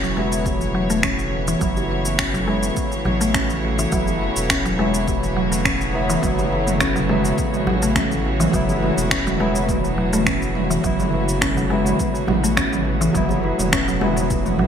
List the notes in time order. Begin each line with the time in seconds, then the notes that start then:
Already playing: E1 C#3 E3 F#3 A3 B3 E4 F#4 C#5
0.03 F#3, cabasa
0.15 F#3 G#3 B3, high bongo
0.19 E4
0.32 cabasa
0.46 kick, high bongo, cabasa
0.61 high conga, cabasa
0.75 F#3
0.90 A3, cabasa
1.03 C#4, finger snap, kick, high conga, cabasa
1.19 cabasa
1.48 E3, cabasa
1.59 F#1 F#3 B3 E4, kick, cabasa
1.77 high bongo, cabasa
1.90 high bongo
2.05 high conga, cabasa
2.19 C#4, finger snap, kick, cabasa
2.34 F#3, low conga, cabasa
2.45 F#3 G#3 B3, high bongo
2.50 E4
2.63 cabasa
2.77 kick, cabasa
2.92 cabasa
3.05 A1 F#3, high bongo, low conga
3.21 A3, cabasa
3.34 C#4, finger snap, kick, cabasa
3.50 high conga, cabasa
3.63 high bongo
3.79 E3, high conga, cabasa
3.90 F#1 F#3 B3 E4, kick, cabasa
4.07 high bongo, high conga, cabasa
4.21 high bongo
4.36 E1, high conga, cabasa
4.50 C#4, finger snap, kick, cabasa
4.65 F#3, cabasa
4.77 F#3 G#3 B3, high bongo
4.81 E4
4.94 cabasa
5.08 kick, high bongo, cabasa
5.23 high conga, cabasa
5.37 F#3
5.52 A3, cabasa
5.65 C#4, finger snap, kick, high conga, cabasa
5.81 cabasa
5.93 F#3 B3 E4
6.10 E3, cabasa
6.21 F#1 F#3 B3, kick, mid tom, cabasa
6.25 E4
6.39 high bongo, cabasa
6.53 high bongo
6.67 mid tom, high conga, cabasa
6.81 C#4, finger snap, kick, cabasa
6.96 F#3, low conga, cabasa
7.08 F#3 G#3 B3, mid tom, high bongo
7.12 E4
7.25 cabasa
7.38 kick, cabasa
7.54 mid tom, cabasa
7.67 A1 F#3, high bongo, low conga
7.82 A3, cabasa
7.96 C#4, finger snap, kick, mid tom, cabasa
8.11 high conga, cabasa
8.25 high bongo
8.40 E3, mid tom, high conga, cabasa
8.51 F#1 F#3 B3, kick, cabasa
8.55 E4
8.69 high bongo, high conga, cabasa
8.82 mid tom, high bongo
8.97 E1, high conga, cabasa
9.11 C#4, finger snap, kick, cabasa
9.27 F#3, mid tom, cabasa
9.38 F#3 G#3 B3, high bongo
9.42 E4
9.55 cabasa
9.69 kick, mid tom, high bongo, cabasa
9.84 high conga, cabasa
9.98 F#3
10.13 A3, mid tom, cabasa
10.26 C#4, finger snap, kick, high conga, cabasa
10.42 cabasa
10.55 mid tom
10.70 E3, cabasa
10.82 F#1 F#3 B3, kick, cabasa
10.86 E4
10.99 mid tom, high bongo, cabasa
11.12 high bongo
11.28 high conga, cabasa
11.41 C#4, finger snap, kick, mid tom, cabasa
11.56 F#3, low conga, cabasa
11.69 F#3 G#3 B3 E4, high bongo
11.86 mid tom, cabasa
11.99 kick, cabasa
12.15 cabasa
12.28 A1 F#3, mid tom, high bongo, low conga
12.44 A3, cabasa
12.57 C#4, finger snap, kick, cabasa
12.72 mid tom, high conga, cabasa
12.85 high bongo
13.01 E3, high conga, cabasa
13.13 F#1 F#3 B3 E4, kick, mid tom, cabasa
13.29 high bongo, high conga, cabasa
13.43 high bongo
13.58 E1, mid tom, high conga, cabasa
13.73 C#4, finger snap, kick, cabasa
13.88 F#3, cabasa
14.00 F#3 G#3 B3 E4, mid tom, high bongo
14.17 low conga, cabasa
14.30 kick, high bongo, cabasa
14.46 mid tom, high conga, cabasa
14.59 A1 F#3, low conga